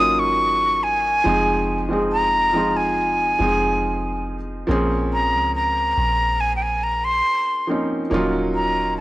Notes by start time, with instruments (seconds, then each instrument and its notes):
Already playing: 808-style bass G#1, felt piano F#3 A#3 C#4 G#4
0.00 felt piano D#4 F4, flute D#6
0.19 flute C#6
0.83 flute G#5
1.24 808-style bass F1, felt piano F3 G#3 C4 D#4
1.28 felt piano G#4
1.89 felt piano F3 G#3 C4 D#4
1.93 felt piano G#4
2.12 flute A#5
2.53 felt piano F3 G#3 C4 D#4
2.57 felt piano F4
2.77 flute G#5
3.39 808-style bass F1, felt piano F3 G#3 C4 D#4
3.43 felt piano G#4
4.67 808-style bass A#1, felt piano F3 A#3 C4 C#4
4.71 felt piano G#4
5.13 flute A#5
5.33 808-style bass C#2
5.55 flute A#5
5.97 808-style bass A#1
6.40 flute G#5
6.56 flute G5
6.62 flute G#5
6.83 flute A#5
7.04 flute C6
7.67 felt piano F3 A#3 C4 C#4 D#4
8.10 808-style bass D#1, felt piano F3 A#3 C#4 D#4
8.14 felt piano F#3 F4
8.55 flute A#5